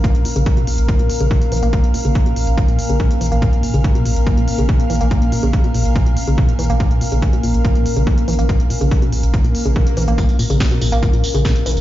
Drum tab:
HH |x-x-o-x-x-x-o-x-x-x-o-x-x-x-oxx-|x-x-o-x-x-x-o-x-x-x-o-x-x-x-oxx-|x-x-o-x-x-x-o-x-x-x-o-x-x-x-oxx-|x-x-o-x-x-x-o-x-x-x-o-x-x-x-oxx-|
TB |--------------------------------|--------------------------------|--------------------------------|--------------------------------|
SD |--------------------------------|--------------------------------|--------------------------------|--------------------------------|
BD |o-------o-------o-------o-------|o-------o-------o-------o-------|o-------o-------o-------o-------|o-------o-------o-------o-------|

HH |x-x-o-x-x-x-o-x-x-x-o-x-x-x-oxx-|x-x-o-x-x-x-o-x-x-x-o-x-x-x-oxx-|x-x-o-x-x-x-o-x-x-x-o-x-x-x-oxx-|
TB |--------------------------------|--------------------------------|x-x-x-x-x-x-x-x-x-x-x-x-x-x-x-x-|
SD |--------------------------------|--------------------------------|--------o---------------o-------|
BD |o-------o-------o-------o-------|o-------o-------o-------o-------|o-------o-------o-------o-------|